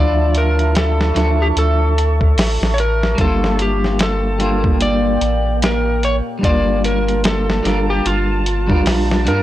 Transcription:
0.00 1.12 D2 loud
0.00 1.10 F3 medium
0.00 1.11 D4 medium
0.00 1.12 E4 medium
0.00 1.14 F4 medium
0.00 0.37 D5 loud
0.00 3.14 E5 medium
0.00 3.14 A5 medium
0.00 3.15 C#6 medium
0.35 0.74 A#4 medium
0.35 closed hi-hat medium
0.59 closed hi-hat soft
0.75 1.43 A4 medium
0.75 snare loud
0.75 closed hi-hat medium
1.01 snare medium
1.14 1.52 D2 medium
1.14 1.92 F3 medium
1.14 1.92 D4 medium
1.14 1.93 E4 medium
1.14 1.94 A4 medium
1.14 snare soft
1.14 closed hi-hat medium
1.42 1.47 G4 medium
1.56 2.37 D2 loud
1.56 2.77 A4 medium
1.56 closed hi-hat medium
1.98 closed hi-hat medium
2.21 kick loud
2.37 2.58 A1 loud
2.37 snare loud
2.37 open hi-hat medium
2.61 3.15 A1 loud
2.61 snare medium
2.74 2.79 C#5 medium
2.78 3.21 A#4 loud
2.78 closed hi-hat medium
3.03 snare medium
3.15 5.18 G1 loud
3.15 4.34 G3 medium
3.15 9.43 A#3 medium
3.15 4.36 D4 medium
3.15 6.40 G5 medium
3.15 kick loud
3.15 closed hi-hat medium
3.20 4.38 A#3 medium
3.20 4.37 F4 medium
3.20 3.61 A4 loud
3.44 snare soft
3.59 3.98 G4 medium
3.59 closed hi-hat medium
3.84 snare soft
3.99 4.78 A4 medium
3.99 snare loud
3.99 closed hi-hat medium
4.38 5.16 G3 medium
4.38 5.18 A#3 medium
4.38 5.17 D4 medium
4.38 5.17 F4 medium
4.38 closed hi-hat medium
4.64 kick loud
4.81 5.58 D5 loud
4.81 closed hi-hat medium
5.21 6.21 A1 medium
5.21 closed hi-hat medium
5.62 6.05 A#4 medium
5.62 snare loud
5.62 closed hi-hat medium
6.03 6.15 C#5 loud
6.03 closed hi-hat medium
6.39 7.58 G3 medium
6.39 7.60 D4 medium
6.43 7.61 G1 loud
6.43 7.62 A#3 medium
6.43 7.61 F4 medium
6.43 6.81 D5 loud
6.43 9.43 A5 medium
6.43 kick loud
6.43 closed hi-hat medium
6.84 7.22 A#4 medium
6.84 closed hi-hat medium
7.08 closed hi-hat soft
7.24 7.90 A4 medium
7.24 snare loud
7.24 closed hi-hat medium
7.50 snare medium
7.63 8.01 G1 medium
7.63 8.41 G3 medium
7.63 8.41 D4 medium
7.63 8.42 F4 medium
7.63 snare soft
7.63 closed hi-hat medium
7.67 8.43 A#4 medium
7.90 8.06 G4 medium
8.05 8.85 G1 loud
8.05 9.31 F4 medium
8.05 closed hi-hat medium
8.46 closed hi-hat medium
8.67 9.21 G3 medium
8.67 9.22 D4 medium
8.67 9.23 F4 medium
8.67 9.23 A#4 loud
8.67 kick medium
8.86 9.28 A#1 medium
8.86 snare loud
8.86 open hi-hat medium
9.11 snare medium
9.25 9.43 G2 medium
9.25 9.43 G3 medium
9.25 9.43 D4 medium
9.25 9.43 F4 medium
9.25 9.43 A#4 medium
9.25 closed hi-hat medium

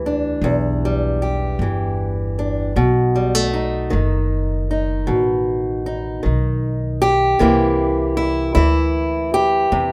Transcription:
0.00 0.38 D2 medium
0.00 0.43 E2 medium
0.00 1.59 E3 medium
0.00 0.82 G3 soft
0.06 2.38 D4 soft
0.42 1.55 B1 medium
0.42 2.76 E2 medium
0.85 2.77 G3 soft
1.22 2.72 G4 soft
1.59 2.72 G1 medium
1.59 2.72 E3 medium
2.39 2.72 D4 soft
2.76 3.88 B1 medium
2.76 3.92 B2 medium
3.16 3.35 G3 soft
3.35 7.40 A3 soft
3.54 4.69 D#4 soft
3.90 5.05 F#1 medium
3.90 6.22 D#3 medium
4.71 5.85 D#4 soft
5.07 6.21 A1 medium
5.07 6.24 B2 medium
5.86 7.36 D#4 soft
6.23 7.38 B1 medium
6.23 7.35 D#3 medium
7.02 8.16 G4 medium
7.39 8.53 C2 medium
7.39 8.56 C3 medium
7.39 8.56 E3 soft
7.39 9.92 A#3 medium
7.39 8.16 E4 medium
8.17 8.53 E4 medium
8.55 9.69 D2 medium
8.55 9.92 E3 medium
8.55 9.33 E4 medium
9.34 9.92 G4 medium
9.72 9.92 E2 medium
9.72 9.92 C3 medium

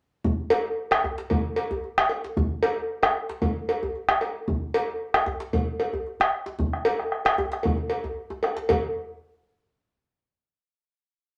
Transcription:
0.24 bombo low medium
0.24 djembe slap soft
0.24 djembe bass medium
0.50 cowbell medium
0.91 bombo rim medium
0.91 cowbell medium
0.91 djembe slap soft
0.91 djembe tone medium
1.04 djembe slap soft
1.04 djembe bass medium
1.18 djembe slap medium
1.30 bombo low medium
1.30 cowbell soft
1.56 cowbell medium
1.71 djembe bass medium
1.84 djembe slap soft
1.98 bombo rim medium
1.98 djembe tone medium
2.09 cowbell soft
2.24 djembe slap medium
2.37 bombo low medium
2.37 djembe slap soft
2.37 djembe bass medium
2.63 cowbell medium
3.03 bombo rim medium
3.03 cowbell soft
3.03 djembe slap soft
3.03 djembe tone medium
3.16 djembe slap soft
3.29 djembe slap medium
3.42 bombo low medium
3.42 cowbell soft
3.69 cowbell medium
3.83 djembe bass medium
3.96 djembe slap soft
4.09 bombo rim medium
4.09 djembe tone medium
4.21 cowbell soft
4.48 bombo low medium
4.48 djembe slap soft
4.48 djembe bass medium
4.74 cowbell medium
5.14 bombo rim medium
5.14 cowbell soft
5.14 djembe slap soft
5.14 djembe tone medium
5.26 djembe slap soft
5.26 djembe bass medium
5.40 djembe slap medium
5.53 bombo low medium
5.53 cowbell soft
5.80 cowbell soft
5.93 djembe bass medium
6.07 djembe slap soft
6.20 bombo rim medium
6.20 djembe tone soft
6.46 djembe slap soft
6.59 bombo low medium
6.59 djembe slap soft
6.59 djembe bass medium
6.73 bombo rim soft
6.85 cowbell medium
6.99 bombo rim soft
7.12 bombo rim soft
7.25 bombo rim medium
7.25 cowbell soft
7.25 djembe tone medium
7.38 bombo rim soft
7.38 djembe bass medium
7.52 bombo rim soft
7.52 djembe slap soft
7.63 bombo low medium
7.63 cowbell soft
7.63 djembe slap soft
7.77 djembe slap soft
7.90 cowbell soft
7.90 djembe slap soft
8.04 djembe slap soft
8.04 djembe bass medium
8.30 djembe slap soft
8.30 djembe tone medium
8.43 bombo rim soft
8.43 cowbell soft
8.57 djembe slap soft
8.69 bombo low medium
8.69 cowbell medium
8.69 djembe bass medium

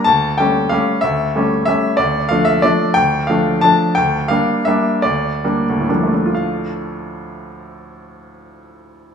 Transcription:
0.04 0.38 D2 soft
0.04 0.38 A5 medium
0.38 0.69 G3 soft
0.38 0.69 A3 soft
0.38 0.69 C#4 soft
0.38 0.71 G5 medium
0.69 1.00 G3 soft
0.69 1.00 A3 soft
0.69 1.00 C#4 soft
0.69 1.02 F5 medium
1.01 1.34 D2 soft
1.01 1.49 E5 medium
1.36 1.64 G3 soft
1.36 1.64 A3 soft
1.36 1.65 C#4 soft
1.66 1.96 G3 soft
1.66 1.96 A3 soft
1.66 1.96 C#4 soft
1.66 1.98 E5 medium
1.97 2.29 D2 soft
1.97 2.29 D5 medium
2.29 2.60 F3 soft
2.29 2.61 A3 soft
2.29 2.61 D4 soft
2.29 2.46 F5 medium
2.45 2.62 E5 medium
2.62 2.94 F3 soft
2.62 2.94 A3 soft
2.62 2.94 D4 soft
2.62 2.96 D5 medium
2.94 3.28 D2 soft
2.94 3.28 G5 medium
3.27 3.60 F3 soft
3.27 3.60 A3 soft
3.27 3.60 D4 soft
3.27 3.62 F5 medium
3.61 3.94 F3 soft
3.61 3.95 A3 soft
3.61 3.95 D4 soft
3.61 3.97 A5 medium
3.95 4.30 D2 soft
3.95 4.30 G5 medium
4.28 4.63 G3 soft
4.28 4.64 A#3 soft
4.28 4.64 D4 soft
4.28 4.66 F5 medium
4.65 5.01 G3 soft
4.65 5.00 A#3 soft
4.65 5.01 D4 soft
4.65 5.03 E5 medium
5.02 5.42 D2 soft
5.02 5.64 D5 medium
5.44 5.85 G3 soft
5.44 5.85 A#3 soft
5.44 5.85 D4 soft
5.69 9.15 D2 soft
5.80 9.15 A2 soft
5.89 9.15 F3 soft
5.89 6.32 G3 soft
5.89 6.33 A#3 soft
5.89 6.13 D4 soft
6.03 9.15 A3 soft
6.14 9.15 D4 soft
6.26 9.15 F4 soft
6.35 9.15 F5 soft

